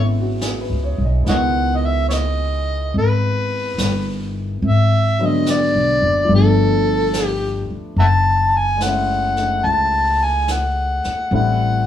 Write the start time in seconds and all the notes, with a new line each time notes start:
Already playing: G#1 E3 G#3 B3 C#4 D#4
0.00 E4
0.20 F#4
0.41 G#4, snare, hi-hat pedal
0.61 B4
0.70 C#2
0.84 C#5
0.98 B1
1.05 D#5
1.24 C#2 E3 G#3 B3, brush sweep, snare
1.29 D#3 C#5 D#5 F#5
1.76 D#5
1.86 E5
2.09 C#5, snare, hi-hat pedal
2.13 D#5
2.94 G#1, brush sweep
2.98 B4
3.78 G1, snare, hi-hat pedal
4.62 G#1, brush sweep
4.67 E5
5.19 D3 F#3 G#3 B3
5.25 D#5
5.46 snare, hi-hat pedal
5.51 D5
5.74 B1
6.02 F#1
6.25 F3 A3
6.29 G1 B3, brush sweep
6.35 D4 A4
7.14 snare, hi-hat pedal
7.27 G4
7.70 muted upright bass stroke
7.96 F#1 E5 F#5 A5, brush sweep
8.57 G#5
8.77 G#3 A3, snare, hi-hat pedal
8.83 C#4 F#5
8.88 E4
9.36 A3 D#4, snare
9.64 C#2 A5, brush sweep
10.23 G#5
10.48 F#5, snare, hi-hat pedal
11.04 muted upright bass stroke, snare
11.31 A1 G3 A3 C4 E4, brush sweep
11.35 F#5